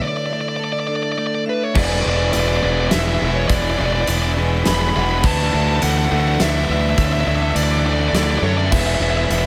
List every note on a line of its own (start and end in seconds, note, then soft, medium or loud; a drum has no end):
0.00 1.47 D3 medium
0.00 0.29 A3 medium
0.00 0.87 D4 medium
0.00 1.72 D4 medium
0.00 1.73 E4 medium
0.00 0.31 A4 medium
0.00 1.73 A4 medium
0.00 0.30 C#5 medium
0.00 0.08 D5 medium
0.08 0.16 D5 medium
0.17 0.25 D5 medium
0.26 0.33 D5 medium
0.30 1.16 A3 medium
0.30 0.89 D5 medium
0.30 0.41 D5 medium
0.41 0.48 D5 medium
0.49 0.56 D5 medium
0.56 1.76 A4 medium
0.56 0.64 D5 medium
0.65 0.72 D5 medium
0.73 0.79 D5 medium
0.80 0.87 D5 medium
0.87 1.45 D4 medium
0.87 1.46 A4 medium
0.87 0.95 D5 medium
0.96 1.03 D5 medium
1.03 1.11 D5 medium
1.12 1.18 D5 medium
1.17 1.75 A3 medium
1.17 1.26 D5 medium
1.27 1.34 D5 medium
1.35 1.43 D5 medium
1.46 1.76 D4 medium
1.46 1.64 B4 medium
1.46 1.75 E5 medium
1.64 1.77 C#5 medium
1.74 2.03 E1 loud
1.74 2.03 E3 medium
1.74 2.04 G#3 loud
1.74 2.03 B3 medium
1.74 2.04 D4 medium
1.74 2.05 E4 loud
1.74 2.04 G#4 medium
1.74 2.32 B4 medium
1.74 8.69 B4 medium
1.74 1.84 D5 medium
1.74 8.69 D5 medium
1.74 9.46 E5 medium
1.74 5.21 B5 medium
1.74 kick loud
1.74 crash loud
1.85 1.92 D5 medium
1.92 2.00 D5 medium
2.01 2.32 E3 medium
2.01 2.33 B3 medium
2.01 2.33 D4 loud
2.01 2.09 D5 medium
2.05 2.32 E1 medium
2.05 2.32 G#3 medium
2.05 2.34 E4 loud
2.05 2.33 G#4 medium
2.10 2.16 D5 medium
2.17 2.25 D5 medium
2.25 2.32 D5 medium
2.32 2.61 E1 medium
2.32 2.61 E3 loud
2.32 2.61 G#3 medium
2.32 2.61 B3 loud
2.32 2.62 D4 loud
2.32 2.62 E4 loud
2.32 2.62 G#4 loud
2.32 2.91 B4 medium
2.32 2.40 D5 medium
2.32 closed hi-hat medium
2.40 2.48 D5 medium
2.48 2.56 D5 medium
2.57 2.63 D5 medium
2.61 2.90 E1 medium
2.61 2.90 E3 loud
2.61 2.90 G#3 loud
2.61 2.90 B3 medium
2.61 2.92 D4 loud
2.61 2.92 E4 loud
2.61 2.92 G#4 loud
2.61 2.71 D5 medium
2.72 2.80 D5 medium
2.81 2.87 D5 medium
2.88 3.19 E3 loud
2.88 3.19 G#3 medium
2.88 3.19 B3 loud
2.88 2.91 D5 medium
2.88 2.99 E5 loud
2.88 snare medium
2.88 closed hi-hat medium
2.92 3.20 E1 medium
2.92 3.20 D4 loud
2.92 3.21 E4 loud
2.92 3.20 G#4 loud
2.92 3.50 B4 loud
2.99 3.07 E5 medium
3.08 3.14 E5 medium
3.15 3.23 E5 medium
3.20 3.48 E1 loud
3.20 3.48 E3 medium
3.20 3.49 G#3 medium
3.20 3.48 B3 medium
3.20 3.50 D4 medium
3.20 3.50 E4 loud
3.20 3.49 G#4 medium
3.25 3.33 E5 medium
3.35 3.48 C#5 medium
3.48 3.76 E1 loud
3.48 3.77 E3 medium
3.48 3.78 G#3 loud
3.48 3.77 B3 medium
3.48 3.79 D4 loud
3.48 3.80 E4 loud
3.48 3.78 G#4 loud
3.48 3.79 C#5 medium
3.48 3.55 D5 medium
3.48 kick loud
3.48 closed hi-hat medium
3.55 3.62 D5 medium
3.62 3.70 D5 medium
3.71 3.78 D5 medium
3.78 4.06 E1 loud
3.78 4.07 E3 medium
3.78 4.07 G#3 loud
3.78 4.07 B3 loud
3.78 4.08 D4 medium
3.78 4.09 E4 loud
3.78 4.08 G#4 loud
3.78 4.37 D5 medium
3.78 3.85 D5 medium
3.86 3.93 D5 medium
3.93 4.01 D5 medium
4.01 4.09 D5 medium
4.07 4.62 E1 medium
4.07 4.36 E3 loud
4.07 4.36 G#3 loud
4.07 4.36 B3 loud
4.07 4.37 D4 loud
4.07 4.38 E4 loud
4.07 4.37 G#4 loud
4.07 4.16 D5 medium
4.07 closed hi-hat medium
4.16 4.22 D5 medium
4.23 4.30 D5 medium
4.36 4.64 E3 medium
4.36 4.65 G#3 loud
4.36 4.64 B3 loud
4.36 4.64 D4 loud
4.36 4.66 E4 loud
4.36 4.65 G#4 loud
4.36 4.95 B4 medium
4.64 4.93 E1 medium
4.64 4.93 E3 loud
4.64 4.94 G#3 loud
4.64 4.93 B3 loud
4.64 4.95 D4 loud
4.64 4.95 E4 loud
4.64 4.95 G#4 loud
4.64 4.74 B5 loud
4.64 snare medium
4.64 closed hi-hat medium
4.75 4.81 B5 medium
4.82 4.89 B5 loud
4.89 4.96 B5 medium
4.94 5.22 E1 loud
4.94 5.22 E3 medium
4.94 5.22 G#3 medium
4.94 5.22 B3 medium
4.94 5.23 D4 loud
4.94 5.25 E4 medium
4.94 5.22 G#4 loud
4.94 5.24 F#5 medium
4.94 5.03 B5 medium
5.04 5.11 B5 medium
5.11 5.18 B5 medium
5.18 5.25 B5 medium
5.22 5.51 D2 loud
5.22 5.51 D3 medium
5.22 5.52 E3 loud
5.22 5.52 A3 medium
5.22 5.53 D4 loud
5.22 5.54 E4 loud
5.22 5.53 A4 loud
5.22 5.82 B4 medium
5.22 5.31 A5 loud
5.22 8.69 D6 medium
5.22 kick loud
5.22 crash loud
5.31 5.39 A5 medium
5.39 5.46 A5 medium
5.46 5.53 A5 medium
5.51 5.80 D2 medium
5.51 5.79 D3 medium
5.51 5.80 E3 medium
5.51 5.81 A3 loud
5.51 5.81 D4 loud
5.51 5.83 E4 loud
5.51 5.82 A4 loud
5.51 5.61 A5 medium
5.63 5.68 A5 medium
5.69 5.76 A5 loud
5.76 6.09 D3 medium
5.76 5.83 A5 medium
5.81 6.09 D2 medium
5.81 6.10 E3 loud
5.81 6.11 A3 loud
5.81 6.11 D4 loud
5.81 6.11 E4 loud
5.81 6.40 A4 loud
5.81 6.11 A4 loud
5.81 5.91 F#5 loud
5.81 closed hi-hat medium
5.91 5.98 F#5 medium
5.98 6.05 F#5 loud
6.05 6.12 F#5 medium
6.10 6.38 D2 medium
6.10 6.38 D3 medium
6.10 6.40 E3 loud
6.10 6.40 A3 medium
6.10 6.41 D4 medium
6.10 6.40 E4 loud
6.10 6.41 A4 loud
6.10 6.20 F#5 loud
6.20 6.27 F#5 medium
6.28 6.34 F#5 medium
6.35 6.42 F#5 medium
6.39 6.67 D2 medium
6.39 6.67 D3 loud
6.39 6.68 E3 loud
6.39 6.68 A3 loud
6.39 6.68 D4 loud
6.39 6.69 E4 loud
6.39 6.69 A4 loud
6.39 6.98 B4 medium
6.39 6.49 E5 medium
6.39 snare medium
6.39 closed hi-hat medium
6.49 6.57 E5 medium
6.57 6.65 E5 medium
6.65 6.95 D3 medium
6.65 6.96 E3 medium
6.65 6.97 A3 medium
6.65 6.97 D4 medium
6.65 6.72 E5 medium
6.69 6.96 D2 loud
6.69 6.99 E4 medium
6.69 6.98 A4 medium
6.69 6.80 E5 medium
6.81 6.89 E5 medium
6.89 6.97 E5 medium
6.96 7.25 D2 loud
6.96 7.25 D3 loud
6.96 7.26 E3 medium
6.96 7.26 A3 medium
6.96 7.27 D4 medium
6.96 7.27 E4 loud
6.96 7.27 A4 loud
6.96 7.26 C#5 medium
6.96 7.05 E5 loud
6.96 kick loud
6.96 closed hi-hat medium
7.05 7.12 E5 medium
7.12 7.20 E5 medium
7.21 7.27 E5 medium
7.26 7.54 D2 medium
7.26 7.54 D3 medium
7.26 7.55 E3 medium
7.26 7.56 A3 loud
7.26 7.56 D4 loud
7.26 7.57 E4 medium
7.26 7.57 A4 medium
7.26 7.85 D5 medium
7.26 7.35 E5 medium
7.36 7.42 E5 medium
7.43 7.50 E5 medium
7.51 7.56 E5 medium
7.55 8.10 D2 loud
7.55 7.83 D3 loud
7.55 7.84 E3 loud
7.55 7.85 A3 loud
7.55 7.85 D4 loud
7.55 7.86 E4 loud
7.55 7.86 A4 loud
7.55 7.63 D5 loud
7.55 closed hi-hat medium
7.64 7.71 D5 medium
7.71 7.79 D5 medium
7.79 7.86 D5 medium
7.84 8.13 D3 medium
7.84 8.14 E3 medium
7.84 8.14 A3 loud
7.84 8.15 D4 loud
7.84 8.15 E4 loud
7.84 8.43 A4 medium
7.84 8.15 A4 loud
7.84 7.93 D5 medium
7.93 8.00 D5 medium
8.00 8.08 D5 medium
8.08 8.15 D5 medium
8.12 8.40 D2 medium
8.12 8.41 D3 loud
8.12 8.41 E3 loud
8.12 8.42 A3 loud
8.12 8.42 D4 loud
8.12 8.44 E4 loud
8.12 8.43 A4 loud
8.12 8.23 D5 medium
8.12 snare medium
8.12 closed hi-hat medium
8.23 8.31 D5 medium
8.31 8.38 D5 medium
8.38 8.69 F#2 loud
8.38 8.70 D3 medium
8.38 8.72 E3 medium
8.38 8.43 D5 medium
8.43 8.72 A3 medium
8.43 8.73 D4 medium
8.43 8.73 E4 loud
8.43 8.73 A4 loud
8.43 8.57 C#5 medium
8.43 8.72 E5 medium
8.58 8.72 D5 medium
8.72 8.99 E1 medium
8.72 9.00 E3 medium
8.72 9.01 G#3 medium
8.72 9.00 B3 medium
8.72 9.01 D4 loud
8.72 9.02 E4 loud
8.72 9.01 G#4 loud
8.72 9.29 B4 loud
8.72 9.46 B4 medium
8.72 8.80 E5 medium
8.72 9.46 D6 medium
8.72 kick loud
8.72 crash loud
8.80 8.86 E5 medium
8.86 8.94 E5 medium
8.95 9.02 E5 medium
8.99 9.27 E1 medium
8.99 9.29 E3 medium
8.99 9.29 G#3 medium
8.99 9.29 B3 medium
8.99 9.30 D4 medium
8.99 9.30 E4 medium
8.99 9.30 G#4 medium
8.99 9.10 E5 medium
9.10 9.17 E5 medium
9.18 9.24 E5 medium
9.24 9.32 E5 medium
9.29 9.46 E1 medium
9.29 9.46 E3 loud
9.29 9.46 G#3 loud
9.29 9.46 B3 loud
9.29 9.46 D4 loud
9.29 9.46 E4 loud
9.29 9.46 G#4 loud
9.29 9.46 B4 loud
9.29 9.38 E5 medium
9.29 closed hi-hat medium
9.39 9.46 E5 medium